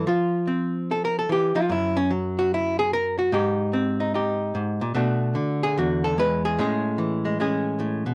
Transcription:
0.07 1.28 F3 medium
0.07 0.48 F4 medium
0.48 1.67 C4 medium
0.91 1.03 A4 medium
1.05 1.16 A#4 medium
1.18 1.30 A4 medium
1.29 1.55 E3 medium
1.29 1.56 G4 medium
1.55 1.69 F3 medium
1.55 1.69 F4 medium
1.69 3.30 F#2 medium
1.69 1.96 E4 medium
1.97 2.10 C#4 medium
2.11 3.30 F#3 medium
2.39 2.52 F#4 medium
2.54 2.78 E4 medium
2.79 2.92 G#4 loud
2.94 3.18 A#4 loud
3.19 3.32 F#4 medium
3.32 4.53 G#2 medium
3.32 3.99 D#4 medium
3.32 4.14 G4 medium
3.73 4.93 C4 medium
4.00 4.13 D#4 medium
4.14 4.93 D#4 medium
4.14 4.93 G4 medium
4.55 4.80 G#2 medium
4.81 4.94 A#2 medium
4.95 5.35 B2 medium
4.95 5.74 A3 medium
4.95 5.75 D4 soft
4.95 5.62 F#4 medium
5.35 6.16 D3 medium
5.63 5.77 G#4 loud
5.78 6.58 E2 medium
5.78 6.03 F#4 medium
6.04 6.17 A4 medium
6.18 6.56 G#3 medium
6.18 6.44 B4 loud
6.45 6.58 G#4 medium
6.58 7.78 A2 medium
6.58 7.24 G#3 medium
6.58 7.39 C#4 medium
6.58 7.40 G#4 medium
6.98 8.14 E3 medium
7.25 7.39 G#3 medium
7.40 8.14 G#3 medium
7.40 8.14 C#4 medium
7.40 8.14 G#4 medium
7.79 8.05 A2 medium
8.06 8.14 B2 medium

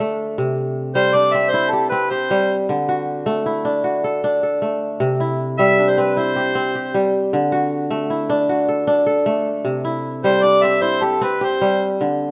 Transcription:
0.00 0.41 D3 medium
0.00 2.00 A3 medium
0.00 1.14 D4 medium
0.00 0.40 E4 medium
0.00 0.69 F#4 medium
0.00 1.12 A4 medium
0.38 2.72 C3 medium
0.95 2.29 G3 medium
0.95 1.16 C5 loud
1.14 2.82 D4 medium
1.14 1.35 D5 loud
1.33 1.91 C4 medium
1.33 1.51 E5 loud
1.50 1.72 C5 loud
1.54 3.10 E4 medium
1.70 2.11 G4 medium
1.70 1.89 A4 medium
1.89 3.72 C4 medium
1.89 2.11 B4 medium
2.10 2.95 G4 medium
2.10 2.54 C5 medium
2.31 2.74 G3 medium
2.69 5.03 D3 medium
2.89 3.84 F#4 medium
3.26 4.61 A3 medium
3.46 5.03 E4 medium
3.65 4.23 D4 medium
3.84 5.30 F#4 medium
4.04 4.43 A4 medium
4.24 5.79 D4 medium
4.43 5.75 A4 medium
4.62 6.62 A3 medium
5.00 7.34 C3 medium
5.20 6.17 E4 medium
5.58 6.93 G3 medium
5.58 5.91 E5 loud
5.79 7.47 D4 medium
5.90 6.01 C5 medium
5.98 6.55 C4 medium
5.98 6.20 B4 medium
6.17 7.74 E4 medium
6.17 7.14 C5 medium
6.36 6.75 G4 medium
6.55 8.35 C4 medium
6.75 7.58 G4 medium
6.94 7.38 G3 medium
7.33 9.67 D3 medium
7.52 8.49 F#4 medium
7.91 9.26 A3 medium
8.10 9.67 E4 medium
8.30 8.87 D4 medium
8.49 9.95 F#4 medium
8.69 9.06 A4 medium
8.87 10.42 D4 medium
9.06 10.38 A4 medium
9.26 11.26 A3 medium
9.65 11.99 C3 medium
9.85 10.81 E4 medium
10.24 11.60 G3 medium
10.24 10.45 C5 loud
10.43 12.11 D4 medium
10.43 10.65 D5 medium
10.63 11.21 C4 medium
10.63 10.83 E5 medium
10.82 12.31 E4 medium
10.82 11.05 C5 medium
11.02 11.41 G4 medium
11.02 11.25 A4 medium
11.21 12.31 C4 medium
11.21 11.46 B4 medium
11.41 12.31 G4 medium
11.41 11.86 C5 medium
11.61 12.05 G3 medium
12.01 12.31 D3 medium

